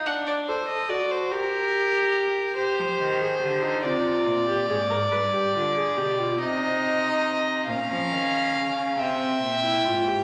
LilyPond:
<<
  \new Staff \with { instrumentName = "Violin" } { \time 6/8 \key c \minor \tempo 4. = 47 r2. | r2. | r2. | \key bes \dorian bes''4. g''4. | }
  \new Staff \with { instrumentName = "Violin" } { \time 6/8 \key c \minor fis''16 d''16 c''16 ees''16 d''16 c''16 bes'4. | c''4. d''4.~ | d''4. ees''4. | \key bes \dorian f''4. e''4. | }
  \new Staff \with { instrumentName = "Viola" } { \time 6/8 \key c \minor d'8 a'8 fis'8 g'4. | g'8. aes'16 g'16 ees'16 f'8. g'16 aes'16 bes'16 | b'16 g'16 f'16 aes'16 g'16 f'16 ees'4. | \key bes \dorian des'4. c'8. e'16 f'16 g'16 | }
  \new Staff \with { instrumentName = "Cello" } { \clef bass \time 6/8 \key c \minor r2. | r16 f16 ees8 d8 c8 bes,8 aes,8 | g,8 d8 b,8 c4. | \key bes \dorian bes,16 f16 ees8 des8 c8 bes,8 aes,8 | }
>>